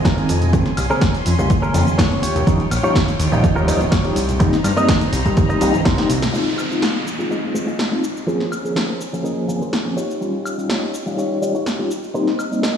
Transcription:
Already playing: F4 D#5 G#5
0.05 F4 G#4 A#4, kick, snare, closed hi-hat, tambourine, shaker
0.17 D#3 F3 G#3 C4, closed hi-hat, tambourine
0.29 F2, open hi-hat, shaker
0.42 closed hi-hat, tambourine, low conga, shaker
0.53 C#3 G#3 A#3 C4 C#4 C6, muted clean electric guitar stroke, kick, closed hi-hat, tambourine, high conga, shaker
0.66 muted clean electric guitar stroke, snare, closed hi-hat, tambourine
0.77 C2, open hi-hat, high woodblock, shaker
0.90 C#3 G#3 A#3 C4 C#4 G#4 A#4, tambourine, shaker
1.01 kick, snare, closed hi-hat, shaker
1.15 closed hi-hat, tambourine, high conga, shaker
1.26 F2, open hi-hat, shaker
1.38 C2 C#3 G#3 A#3, muted clean electric guitar stroke, tambourine, shaker
1.50 kick, closed hi-hat, tambourine, shaker
1.62 C#4 G#4 A#4, tambourine, shaker
1.74 F2 C#3 G#3 A#3 C4, open hi-hat, shaker
1.87 F1, closed hi-hat, tambourine, high conga, shaker
1.98 F1 C#4 G#4 C#5, kick, snare, closed hi-hat, shaker
2.11 C#3 G#3 A#3 C4, closed hi-hat, tambourine
2.22 D#2 F4 G4 C#5 G5, open hi-hat, shaker
2.36 D#2, closed hi-hat, tambourine, low conga, shaker
2.47 D#2 F3 G3 C#4 D#4, kick, closed hi-hat, tambourine, high conga, shaker
2.59 muted clean electric guitar stroke, closed hi-hat, tambourine
2.71 A#1, open hi-hat, high woodblock, shaker
2.83 F3 G3 C#4 D#4 F4 G4 C#5, tambourine, shaker
2.95 kick, snare, closed hi-hat, shaker
3.08 closed hi-hat, tambourine, high conga, shaker
3.19 D#2, open hi-hat, shaker
3.32 A#1 F3 G3 C#4 D#4, muted clean electric guitar stroke, tambourine, shaker
3.44 D#2, kick, closed hi-hat, tambourine, shaker
3.56 D#2 F4 G4 A#4, tambourine, shaker
3.68 F3 G3 C#4 D#4, open hi-hat, shaker
3.81 D#1, closed hi-hat, tambourine, high conga, shaker
3.91 F4 G4 C#5, kick, snare, closed hi-hat, tambourine, shaker
4.05 F3 G3 C#4 D#4, closed hi-hat, tambourine
4.16 C2, open hi-hat, shaker
4.29 closed hi-hat, tambourine, low conga, shaker
4.40 G3 A#3 C4 D#4 C5 A#5, muted clean electric guitar stroke, kick, closed hi-hat, tambourine, high conga, shaker
4.53 muted clean electric guitar stroke, snare, closed hi-hat, tambourine, shaker
4.64 G2, open hi-hat, high woodblock, shaker
4.77 G3 A#3 C4 D#4 A#4 D#5, closed hi-hat, tambourine, shaker
4.88 kick, snare, closed hi-hat, tambourine, shaker
5.01 closed hi-hat, tambourine, high conga, shaker
5.13 C2, open hi-hat, shaker
5.25 G2 G3 A#3 C4 D#4, muted clean electric guitar stroke, kick, closed hi-hat, tambourine, shaker
5.37 kick, closed hi-hat, tambourine, shaker
5.49 D#4 A#4 D#5, closed hi-hat, shaker
5.61 C2 G3 A#3 C4 D#4, open hi-hat, shaker
5.74 C2, closed hi-hat, tambourine, high conga, shaker
5.85 C2 D#4 A#4 C5, kick, snare, closed hi-hat, tambourine, shaker
5.98 G3 A#3 C4 D#4, snare, closed hi-hat, tambourine
6.10 C2, open hi-hat, shaker
6.22 snare, closed hi-hat, tambourine, low conga, shaker
6.33 G#3 C4 D#4 F4 G#4 D#5 G#5, downlifter, shaker
6.58 high woodblock, shaker
6.70 G#3 C4 D#4 F4, shaker
6.82 F4 G#4 F5, snare, shaker
7.07 shaker
7.19 G#3 C4 D#4 F4, shaker
7.30 F4 G#4 D#5, shaker
7.54 G#3 C4 D#4 F4, shaker
7.67 F4 G#4 D#5, shaker
7.79 snare, shaker
7.91 G#3 C4 D#4 F4, muted clean electric guitar stroke
8.04 shaker
8.17 shaker
8.27 F3 A#3 C4 C#4 G#4 A#4 C5 A#5, shaker
8.40 snare
8.52 high woodblock, shaker
8.64 F3 A#3 C4 C#4 G#4, shaker
8.75 F3 C#4 G#4 A#4 C5, snare, shaker
9.01 shaker
9.13 F3 A#3 C#4 G#4 C5, shaker
9.24 F3 C#4 G#4 A#4 D#5, shaker
9.48 F3 A#3 C4 C#4 G#4, shaker
9.61 F3 C#4 G#4 A#4 C5, shaker
9.73 snare, shaker
9.85 F3 A#3 C4 C#4 G#4, muted clean electric guitar stroke
9.96 D#4 F4 G4 C#5 D#5 G5, shaker
10.11 shaker
10.21 G3 C#4 D#4 F4, shaker
10.46 high woodblock, shaker
10.58 G3 C#4 D#4 F4, shaker
10.69 D#4 F4 G4 C#5, snare, shaker
10.94 shaker
11.06 G3 C#4 D#4 F4, shaker
11.18 D#4 F4 G4 C#5, shaker
11.42 G3 C#4 D#4 F4, shaker
11.54 D#4 F4 G4 C#5, shaker
11.66 snare, shaker
11.79 G3 C#4 D#4 F4, muted clean electric guitar stroke
11.91 shaker
12.04 shaker
12.14 G3 A#3 C4 D#4 A#4 C5 A#5, shaker
12.27 snare
12.39 high woodblock, shaker
12.51 G3 A#3 C4 D#4, shaker
12.62 D#4 A#4 D#5, snare, shaker

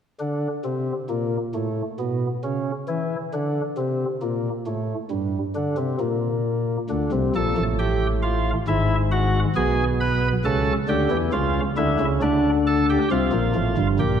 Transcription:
0.20 D3
0.64 C3
1.09 A#2
1.54 A2
1.99 B2
2.44 C#3
2.88 E3
3.34 D3
3.77 C3
4.22 A#2
4.67 A2
5.10 G2
5.55 D3
5.77 C3
6.00 A#2
6.89 D2 D3
7.12 C2 C3
7.35 A#1 A#2 A4
7.57 A1 A2
7.79 G4
8.23 F4
8.68 G#1 G#2 E4
9.12 F#4
9.56 B1 B2 G#4
10.01 B4
10.45 C#2 C#3 A4
10.88 D2 D3 G4
11.11 E2 E3
11.33 C#2 C#3 F4
11.77 D2 D3 E4
12.00 C#2 C#3
12.22 D2 D3 D4
12.67 A4
12.90 G4
13.11 C2 C3 F4
13.33 A#1 A#2
13.55 A1 A2
13.78 G1 G2
13.99 A#1 A#2 G4

